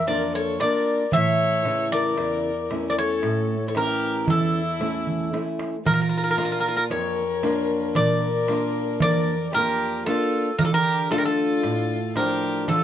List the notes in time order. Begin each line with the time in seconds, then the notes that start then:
Already playing: F2
0.07 A#3 D4 F4 A#4 D5, darbuka tek
0.35 A4 C#5
0.60 A#3 D4 F4 A#4 D5, darbuka tek
1.12 A2 C#5 E5, darbuka dum
1.65 C#3 E3 E4, darbuka tek
1.92 A#4 D5, darbuka tek
2.18 E2, darbuka tek
2.70 A3 C#4 E4, darbuka tek
2.90 A#4 D5
2.97 A4 C#5, darbuka tek
3.23 A2, darbuka tek
3.68 A4 C#5
3.75 E3 C#4 E4 G4 A#4, darbuka tek
4.01 darbuka tek
4.27 E2 E4 A4, darbuka dum
4.80 A3 C#4 E4, darbuka tek
5.07 darbuka dum
5.33 A3 C#4 E4, darbuka tek
5.59 darbuka tek
5.85 A#2 F4 A#4, darbuka dum
5.94 A#4
6.02 A#4
6.09 A#4
6.18 A#4
6.24 A#4
6.31 A#4
6.37 A#3 D4 F4 A#4, darbuka tek
6.45 A#4
6.52 A#4
6.60 A#4
6.65 A#4, darbuka tek
6.77 A#4
6.90 F2 A#4 C#5, darbuka tek
7.17 darbuka tek
7.43 A#3 D4 F4, darbuka tek
7.70 darbuka tek
7.95 A#2 A#4 D5, darbuka tek, darbuka dum
8.48 A#3 D4 F4, darbuka tek
9.00 F2 A#4 D5, darbuka dum
9.53 A#3 D4 F4 G4 A#4, darbuka tek
10.06 A#3 D4 F4 A4, darbuka tek
10.59 D3 F4 A#4, darbuka dum
10.65 F4 A4
10.74 G4 A#4
11.11 A3 D4 F4 A4, darbuka tek
11.18 G4 A#4
11.25 F4 A4
11.37 darbuka tek
11.63 A2, darbuka tek
11.90 darbuka tek
12.16 F3 D4 F4 G4 A#4, darbuka tek
12.43 darbuka tek
12.68 D3 F4 A4, darbuka tek, darbuka dum